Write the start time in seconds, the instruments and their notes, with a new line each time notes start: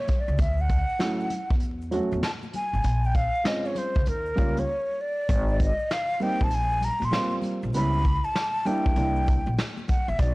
0.00 flute C#5
0.08 kick, closed hi-hat, high conga, low conga, shaker
0.20 flute D5
0.28 upright bass C#2, shaker
0.38 upright bass D2, flute E5, kick, closed hi-hat, shaker
0.57 flute F#5, shaker
0.69 kick, closed hi-hat, shaker
0.89 shaker
0.99 upright piano F#3 A3 C#4 E4, snare, closed hi-hat, shaker
1.20 shaker
1.30 closed hi-hat, low conga, shaker
1.50 upright bass E2, kick, shaker
1.60 closed hi-hat, shaker
1.81 shaker
1.91 upright piano F#3 A3 C#4 F#4, closed hi-hat, low conga, shaker
2.12 upright bass E2, high conga, shaker
2.23 flute A5, snare, closed hi-hat, shaker
2.43 high conga, shaker
2.53 flute G#5, closed hi-hat, high conga, low conga, shaker
2.73 upright bass G#1, shaker
2.84 upright bass A#1, closed hi-hat, shaker
3.04 flute G5, shaker
3.15 flute F5, kick, closed hi-hat, shaker
3.35 shaker
3.44 upright piano G#3 C4 C#4 F4, flute D#5, snare, closed hi-hat, shaker
3.65 flute C#5, shaker
3.75 flute C5, closed hi-hat, low conga, shaker
3.95 upright bass C#2, kick, shaker
4.06 upright bass D#2, flute A#4, closed hi-hat, shaker
4.26 shaker
4.36 upright bass C#2, upright piano G3 A#3 C#4 F4, kick, closed hi-hat, low conga, shaker
4.57 flute C#5, closed hi-hat, high conga, shaker
5.01 flute D5
5.29 upright bass G#1, kick, closed hi-hat, shaker
5.48 shaker
5.59 flute D#5, kick, closed hi-hat, shaker
5.79 shaker
5.90 flute F5, snare, closed hi-hat, shaker
6.10 shaker
6.20 upright piano G3 A#3 C4 D#4, flute G5, open hi-hat, low conga, shaker
6.40 upright bass A#1, kick, shaker
6.44 flute A5
6.51 flute G#5, closed hi-hat, shaker
6.70 shaker
6.81 flute A#5, closed hi-hat, low conga, shaker
7.00 upright bass A#1, closed hi-hat, high conga, shaker
7.05 flute C6
7.11 upright piano G3 A#3 C4 F4, snare, closed hi-hat, shaker
7.31 high conga, shaker
7.42 closed hi-hat, high conga, low conga, shaker
7.62 upright bass A#1, shaker
7.73 upright bass C#2, upright piano G3 B3 C#4 E4, flute B5, closed hi-hat, shaker
7.93 shaker
8.04 kick, closed hi-hat, shaker
8.24 flute A5, shaker
8.35 snare, closed hi-hat, shaker
8.55 shaker
8.65 upright piano G3 A#3 D4 E4, flute G5, closed hi-hat, low conga, shaker
8.85 upright bass D2, kick, shaker
8.96 upright bass C2, upright piano G3 A#3 D4 E4, closed hi-hat, shaker
9.16 shaker
9.26 kick, closed hi-hat, low conga, shaker
9.46 upright bass A#1, high conga, shaker
9.58 snare, closed hi-hat, shaker
9.77 high conga, shaker
9.88 flute F#5, kick, closed hi-hat, high conga, low conga, shaker
10.08 upright bass A1, flute E5, shaker
10.19 upright bass B1, flute D5, kick, closed hi-hat, shaker